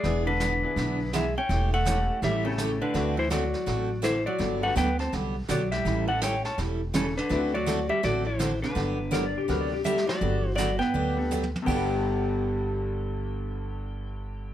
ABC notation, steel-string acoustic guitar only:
X:1
M:4/4
L:1/16
Q:"Swing" 1/4=165
K:G
V:1 name="Steel-string acoustic guitar"
[E,B,D^G]2 z2 [E,B,DG] z3 [E,B,DG]2 z2 [E,B,DG] z3 | [E,A,^CG]2 z2 [E,A,CG] z3 [E,A,CG]2 z2 [E,A,CG] z3 | [D,A,CFA]2 z2 [D,A,CFA] z3 [D,A,CFA]2 z2 [D,A,CFA] z3 | [D,F,B,DG]2 z2 [D,F,B,DG] z3 [D,F,B,DG]2 z2 [D,F,B,DG] z3 |
[E,G,^CEA]2 z2 [E,G,CEA] z3 [E,G,CEA]2 z2 [E,G,CEA] z3 | [D,A,CFA]2 z2 [D,A,CFA] z3 [D,A,CFA]2 z2 [D,A,CFA] z3 | [D,F,B,DG]2 z2 [D,F,B,DG] z3 [D,F,B,DG]2 z2 [D,F,B,DG] z3 | [D,F,B,DG]2 z2 [D,F,B,DG] z3 [D,F,B,DG]2 z2 [D,F,B,DG] z3 |
[G,,D,B,DG]16- | [G,,D,B,DG]16 |]